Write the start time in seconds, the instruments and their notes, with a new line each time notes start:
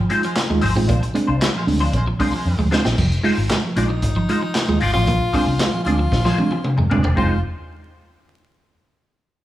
0.10 reed electric piano G#3 D#4 F4, clean electric guitar C4 D#4 G#4 C5, muted clean electric guitar stroke, closed hi-hat
0.22 clean electric guitar F3, horn section G#3 F4 C5, muted clean electric guitar stroke, closed hi-hat
0.36 muted clean electric guitar stroke, snare, clap, closed hi-hat
0.49 fingered electric bass D#2, reed electric piano G#3 D#4 F4, clean electric guitar G#3, muted clean electric guitar stroke
0.61 fingered electric bass G#1, reed electric piano F3, clean electric guitar C4 D#4 G#4 C5, muted clean electric guitar stroke, open hi-hat
0.76 fingered electric bass A1, reed electric piano G#3 D#4 F4, clean electric guitar C4
0.87 fingered electric bass A#1, reed electric piano A#2 F3, clean electric guitar G#3 A#3 D4 F4 C5, kick, closed hi-hat
1.03 muted clean electric guitar stroke, closed hi-hat
1.14 reed electric piano G#3 C4 D4, clean electric guitar G#3, muted clean electric guitar stroke, closed hi-hat
1.27 fingered electric bass C2, clean electric guitar G#3 D4 F4 C5, reed electric piano C4 D4
1.41 clean electric guitar G#3, reed electric piano C4 D4, muted clean electric guitar stroke, snare, clap, closed hi-hat
1.54 reed electric piano A#2 F3, horn section G#3 F4 C5, muted clean electric guitar stroke
1.67 fingered electric bass D2, reed electric piano G#3 C4 D4, open hi-hat
1.80 clean electric guitar F3 G#3 D4 F4 C5
1.93 fingered electric bass A#1, horn section G#3 F4 C5, reed electric piano C4 D4, muted clean electric guitar stroke, kick, closed hi-hat
2.07 reed electric piano A#2 F3, clean electric guitar F3, muted clean electric guitar stroke
2.19 clean electric guitar G#3 D4 F4 C5, reed electric piano G#3 C4 D4, muted clean electric guitar stroke, kick, open hi-hat
2.33 clean electric guitar F3, horn section G#3 F4 C5, muted clean electric guitar stroke
2.45 fingered electric bass F2, reed electric piano C4 D4, muted clean electric guitar stroke
2.59 fingered electric bass D2, reed electric piano A#2 F3, clean electric guitar G#3, muted clean electric guitar stroke
2.71 clean electric guitar G#3 D4 F4 C5, reed electric piano G#3 C4 D4, muted clean electric guitar stroke, snare
2.85 fingered electric bass A#1, clean electric guitar C4, muted clean electric guitar stroke, snare
2.98 fingered electric bass F1, reed electric piano F3, clean electric guitar F3, kick, crash
3.12 muted clean electric guitar stroke, closed hi-hat
3.24 clean electric guitar G#3 D#4 F4 C5, reed electric piano G#3 D#4 F4, open hi-hat
3.37 fingered electric bass G#1, reed electric piano D#4 F4
3.50 clean electric guitar G#3, reed electric piano D#4 F4, muted clean electric guitar stroke, snare, clap, closed hi-hat
3.64 reed electric piano F3, muted clean electric guitar stroke
3.76 fingered electric bass A#1, clean electric guitar G#3 D#4 F4 D5, reed electric piano G#3 D#4 F4, tenor saxophone D#4, closed hi-hat
3.89 clean electric guitar F3, muted clean electric guitar stroke
4.02 fingered electric bass G#1, reed electric piano D#4 F4, muted clean electric guitar stroke, kick, closed hi-hat
4.16 clean electric guitar F3, reed electric piano F3, muted clean electric guitar stroke
4.29 reed electric piano G#3 D#4 F4, clean electric guitar G#3 D#4 F4 C5, muted clean electric guitar stroke, closed hi-hat
4.42 clean electric guitar F3, muted clean electric guitar stroke
4.55 muted clean electric guitar stroke, snare, clap, closed hi-hat
4.68 fingered electric bass D#2, reed electric piano G#3 D#4 F4, clean electric guitar G#3, muted clean electric guitar stroke
4.80 fingered electric bass G#1, clean electric guitar G#3 D#4 F4 D5, tenor saxophone F4, muted clean electric guitar stroke, open hi-hat
4.93 fingered electric bass A1, reed electric piano F3, clean electric guitar G#3 C4 D#4 F4 D5, tenor saxophone F4
5.07 fingered electric bass A#1, reed electric piano A#2 F3, clean electric guitar A#3, kick, closed hi-hat
5.21 muted clean electric guitar stroke
5.33 reed electric piano G#3 C4 D4, clean electric guitar G#3 A#3 D4 G#4 C5, kick, open hi-hat
5.47 fingered electric bass C2, reed electric piano C4 D4
5.59 clean electric guitar G#3, reed electric piano C4 D4, muted clean electric guitar stroke, snare, clap, closed hi-hat
5.73 reed electric piano A#2 F3, muted clean electric guitar stroke
5.84 fingered electric bass D2, reed electric piano G#3 C4 D4, clean electric guitar A#3 D4 G#4 D5, tenor saxophone F4, closed hi-hat
5.99 clean electric guitar F3, muted clean electric guitar stroke
6.12 fingered electric bass A#1, reed electric piano C4 D4, muted clean electric guitar stroke, kick, snare
6.25 reed electric piano A#2 F3, clean electric guitar F3 A#3 D4 G#4 C5, snare
6.38 reed electric piano G#3 C4 D4, muted clean electric guitar stroke, high tom
6.51 clean electric guitar F3, muted clean electric guitar stroke, high tom
6.64 reed electric piano C4 D4, muted clean electric guitar stroke, mid tom
6.77 fingered electric bass F2, reed electric piano A#2 F3, clean electric guitar G#3, muted clean electric guitar stroke, mid tom
6.90 fingered electric bass D#1, reed electric piano G#3 C4 D4, clean electric guitar A#3 D4 G#4 D5, muted clean electric guitar stroke, floor tom
7.03 fingered electric bass E1, clean electric guitar A#3 C4 D4 G#4 D5, floor tom
7.16 fingered electric bass F1, clean electric guitar G#3 C4 D#4 F4 C5, reed electric piano G#3 D#4 F4, horn section G#3 F4 C5, tenor saxophone F4, kick